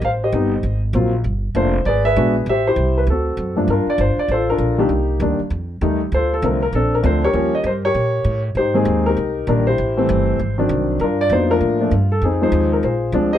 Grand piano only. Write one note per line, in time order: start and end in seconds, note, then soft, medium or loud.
0.05 0.23 C5 medium
0.05 0.10 F5 medium
0.24 0.62 G4 medium
0.24 0.80 C5 medium
0.24 0.80 D#5 medium
0.33 0.50 G3 medium
0.33 0.50 B3 medium
0.33 0.51 C4 medium
0.33 0.51 D#4 medium
0.94 1.11 F#3 medium
0.94 1.11 A#3 medium
0.94 1.11 C4 medium
0.94 1.12 F4 medium
1.55 1.72 A3 medium
1.55 1.72 A#3 medium
1.55 1.72 D4 medium
1.55 1.73 F4 medium
1.55 1.87 C5 medium
1.86 2.04 G#4 medium
1.86 2.05 B4 medium
1.86 2.03 D5 medium
2.05 2.44 G#4 medium
2.05 2.45 B4 medium
2.05 2.33 E5 loud
2.16 2.33 G#3 medium
2.16 2.33 B3 medium
2.16 2.33 D4 medium
2.16 2.34 F#4 medium
2.49 2.67 G4 medium
2.49 2.66 C5 medium
2.49 2.67 E5 medium
2.67 3.06 E4 medium
2.67 3.06 G4 medium
2.67 2.98 C5 medium
2.98 3.03 B4 medium
3.10 3.66 C4 soft
3.10 3.66 F#4 medium
3.10 3.55 A4 medium
3.56 3.67 G2 medium
3.56 3.67 F3 medium
3.56 3.67 A3 medium
3.56 3.67 A#3 medium
3.56 3.68 D4 medium
3.70 4.26 D4 medium
3.70 4.27 F4 medium
3.70 3.87 A#4 medium
3.90 4.00 D5 medium
4.01 4.17 C5 medium
4.19 4.31 D5 medium
4.31 4.50 F4 medium
4.31 4.88 A4 medium
4.31 4.48 C5 medium
4.50 4.78 D4 medium
4.50 4.89 F4 medium
4.50 4.77 A#4 medium
4.78 4.89 D#3 medium
4.78 4.89 G3 medium
4.78 4.81 A#3 medium
4.78 5.20 A#3 medium
4.78 4.89 D4 medium
4.78 5.19 G4 medium
4.82 5.38 D#4 medium
5.21 5.38 D#3 medium
5.21 5.38 G3 medium
5.21 5.38 A#3 medium
5.21 5.39 D4 medium
5.82 5.99 D#3 medium
5.82 5.99 G3 medium
5.82 5.99 A3 medium
5.82 5.99 D#4 medium
6.14 6.71 F4 medium
6.14 6.32 A4 medium
6.14 6.33 C5 medium
6.33 6.44 A4 medium
6.43 6.60 D3 medium
6.43 6.60 F3 medium
6.43 6.60 A3 medium
6.43 6.60 C4 medium
6.43 6.61 A#4 medium
6.63 6.73 A#4 medium
6.75 7.02 C4 medium
6.75 7.32 D4 medium
6.75 6.94 A4 medium
6.95 7.06 A#4 medium
7.03 7.20 D3 medium
7.03 7.20 F3 medium
7.03 7.21 A3 medium
7.03 7.21 C4 medium
7.03 7.24 C5 medium
7.24 7.81 G4 medium
7.24 7.81 A#4 medium
7.24 7.55 C#5 loud
7.34 7.51 F3 medium
7.34 7.51 G3 medium
7.34 7.51 A#3 medium
7.34 7.51 C#4 medium
7.55 7.66 D#5 medium
7.67 7.72 C5 medium
7.85 8.42 G4 medium
7.85 8.42 A#4 medium
7.85 8.41 C#5 loud
8.57 8.76 D#4 medium
8.57 9.07 G4 medium
8.57 8.74 C5 medium
8.74 9.15 D#3 medium
8.74 9.15 G#3 medium
8.74 9.15 A#3 medium
8.74 9.15 C4 medium
8.74 9.08 D#4 medium
8.74 9.07 G#4 medium
9.06 9.64 D#4 medium
9.06 9.64 G4 medium
9.06 9.47 A#4 medium
9.48 9.65 D#3 medium
9.48 9.65 G3 medium
9.48 9.65 A#3 medium
9.48 9.65 D4 medium
9.48 9.68 A#4 medium
9.67 10.36 E4 medium
9.67 10.36 G4 medium
9.67 10.54 C5 medium
9.97 10.37 E3 medium
9.97 10.37 G3 medium
9.97 10.37 A3 medium
9.97 10.38 C4 medium
10.58 10.98 D#3 medium
10.58 10.98 F#3 medium
10.58 10.98 C4 medium
10.58 10.99 D4 medium
11.01 11.50 D4 medium
11.01 11.51 F4 medium
11.01 11.18 A#4 medium
11.21 11.32 D5 loud
11.31 11.48 F#3 medium
11.31 11.48 A#3 medium
11.31 11.48 B3 soft
11.31 11.48 D#4 medium
11.31 11.51 C5 medium
11.50 11.77 F3 medium
11.50 11.77 A3 medium
11.50 11.77 A#3 medium
11.50 11.77 D4 medium
11.50 12.08 F4 medium
11.50 11.89 A#4 loud
11.80 11.91 F3 medium
11.80 11.91 A3 medium
11.80 11.91 A#3 medium
11.80 11.91 D4 medium
12.12 12.23 A4 medium
12.24 12.40 C4 medium
12.24 12.41 D#4 medium
12.24 12.42 G#4 medium
12.41 12.81 F3 medium
12.41 12.81 G#3 medium
12.41 12.81 C4 medium
12.41 12.81 D#4 medium
12.41 12.82 G#4 medium
12.41 12.70 C5 medium
12.73 12.84 A#4 medium
12.84 13.38 F4 medium
12.84 13.38 G#4 medium
12.84 13.12 C5 medium
13.14 13.30 F3 medium
13.14 13.30 G#3 medium
13.14 13.31 C4 medium
13.14 13.31 D4 medium
13.33 13.38 C5 medium
13.33 13.38 D#5 loud